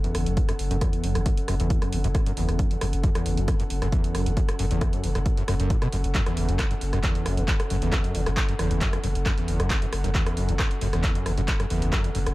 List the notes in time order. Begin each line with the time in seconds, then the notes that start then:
Already playing: C#4 A4 F#5
0.04 E2, closed hi-hat
0.15 F#1, cross-stick, open hi-hat
0.26 F#1 F#2, closed hi-hat
0.37 E2, kick, closed hi-hat
0.49 F#2, cross-stick, closed hi-hat
0.59 F#1, open hi-hat
0.71 F#1 F#2, closed hi-hat
0.81 E2, kick, cross-stick, closed hi-hat
0.93 closed hi-hat
1.03 F#1 F#2, open hi-hat
1.15 F#1 E2, cross-stick, closed hi-hat
1.26 F#2, kick, closed hi-hat
1.37 closed hi-hat
1.48 F#1 F#2, cross-stick, open hi-hat
1.60 F#1 E2, closed hi-hat
1.70 kick, closed hi-hat
1.82 F#2, cross-stick, closed hi-hat
1.92 F#1 E2, open hi-hat
2.04 F#1 F#2, closed hi-hat
2.15 kick, cross-stick, closed hi-hat
2.26 F#2, closed hi-hat
2.37 F#1 E2, open hi-hat
2.49 F#1, cross-stick, closed hi-hat
2.59 F#2, kick, closed hi-hat
2.71 E2, closed hi-hat
2.81 F#1 F#2, cross-stick, open hi-hat
2.93 F#1, closed hi-hat
3.04 F#2, kick, closed hi-hat
3.15 E2, cross-stick, closed hi-hat
3.26 F#1, open hi-hat
3.37 F#1 F#2, closed hi-hat
3.48 E2, kick, cross-stick, closed hi-hat
3.60 F#2, closed hi-hat
3.70 F#1, open hi-hat
3.82 F#1 F#2, cross-stick, closed hi-hat
3.92 E2, kick, closed hi-hat
4.04 closed hi-hat
4.15 F#1 F#2, cross-stick, open hi-hat
4.26 F#1 E2, closed hi-hat
4.37 F#2, kick, closed hi-hat
4.49 cross-stick, closed hi-hat
4.59 F#1 F#2, open hi-hat
4.71 F#1 E2, closed hi-hat
4.81 kick, cross-stick, closed hi-hat
4.93 F#2, closed hi-hat
5.03 F#1 E2, open hi-hat
5.15 F#1 F#2, cross-stick, closed hi-hat
5.26 kick, closed hi-hat
5.37 F#2, closed hi-hat
5.48 F#1 F#2, cross-stick, open hi-hat
5.60 F#1 F#2, closed hi-hat
5.70 A2, kick, closed hi-hat
5.82 B2, cross-stick, closed hi-hat
5.92 F#1 F#2, open hi-hat
6.04 F#1, closed hi-hat
6.15 F#2, kick, clap, closed hi-hat
6.26 E2, cross-stick, closed hi-hat
6.37 F#1, open hi-hat
6.49 F#1 F#2, closed hi-hat
6.59 E2, kick, cross-stick, clap, closed hi-hat
6.71 F#2, closed hi-hat
6.81 F#1, open hi-hat
6.93 F#1 F#2, cross-stick, closed hi-hat
7.03 E2, kick, clap, closed hi-hat
7.15 closed hi-hat
7.26 F#1 F#2, cross-stick, open hi-hat
7.37 F#1 E2, closed hi-hat
7.48 F#2, kick, clap, closed hi-hat
7.60 cross-stick, closed hi-hat
7.70 F#1 F#2, open hi-hat
7.82 F#1 E2, closed hi-hat
7.92 kick, cross-stick, clap, closed hi-hat
8.04 F#2, closed hi-hat
8.15 F#1 E2, open hi-hat
8.26 F#1 F#2, cross-stick, closed hi-hat
8.37 kick, clap, closed hi-hat
8.49 F#2, closed hi-hat
8.59 F#1 E2, cross-stick, open hi-hat
8.71 F#1, closed hi-hat
8.81 F#2, kick, clap, closed hi-hat
8.93 E2, cross-stick, closed hi-hat
9.04 F#1 F#2, open hi-hat
9.15 F#1, closed hi-hat
9.26 F#2, kick, cross-stick, clap, closed hi-hat
9.37 E2, closed hi-hat
9.48 F#1, open hi-hat
9.60 F#1 F#2, cross-stick, closed hi-hat
9.70 E2, kick, clap, closed hi-hat
9.82 F#2, closed hi-hat
9.92 F#1, cross-stick, open hi-hat
10.04 F#1 F#2, closed hi-hat
10.15 E2, kick, clap, closed hi-hat
10.26 cross-stick, closed hi-hat
10.37 F#1 F#2, open hi-hat
10.48 F#1 E2, closed hi-hat
10.59 F#2, kick, cross-stick, clap, closed hi-hat
10.71 closed hi-hat
10.81 F#1 F#2, open hi-hat
10.93 F#1 E2, cross-stick, closed hi-hat
11.04 kick, clap, closed hi-hat
11.15 F#2, closed hi-hat
11.26 F#1 E2, cross-stick, open hi-hat
11.37 F#1 F#2, closed hi-hat
11.48 kick, clap, closed hi-hat
11.60 F#2, cross-stick, closed hi-hat
11.70 F#1 E2, open hi-hat
11.82 F#1, closed hi-hat
11.93 F#2, kick, cross-stick, clap, closed hi-hat
12.04 E2, closed hi-hat
12.15 F#1 F#2, open hi-hat
12.26 F#1, cross-stick, closed hi-hat